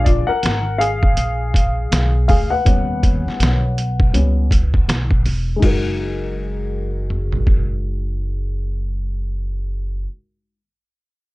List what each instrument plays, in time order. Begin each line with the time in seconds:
Already playing: upright bass A#1, upright piano F3 G#3 D4
0.04 upright piano F4 D5, kick, closed hi-hat
0.27 upright piano A#4 F#5, muted upright bass stroke
0.43 upright bass G#1, snare, closed hi-hat
0.78 upright piano G#4 F5, closed hi-hat
1.03 kick
1.17 upright bass A#1, closed hi-hat
1.54 kick, closed hi-hat
1.92 upright bass B1, snare, closed hi-hat
2.28 upright bass D2, upright piano G#4 F5, kick, open hi-hat
2.50 upright piano B4 F#5
2.65 upright bass D#2, upright piano G3 B3 C#4, kick, closed hi-hat
3.03 kick, closed hi-hat
3.26 muted upright bass stroke, snare
3.40 upright bass B1, snare, closed hi-hat
3.78 closed hi-hat
4.00 kick
4.13 upright bass C#2, upright piano G3 B3 C#4, closed hi-hat
4.51 kick, closed hi-hat
4.74 kick
4.88 upright bass B1, snare, closed hi-hat
5.11 kick
5.26 upright bass E1, open hi-hat
5.56 upright piano G#3 D#4
5.62 upright bass F#1, upright piano F#4 A#4, kick, crash
7.10 mid tom
7.32 floor tom
7.47 kick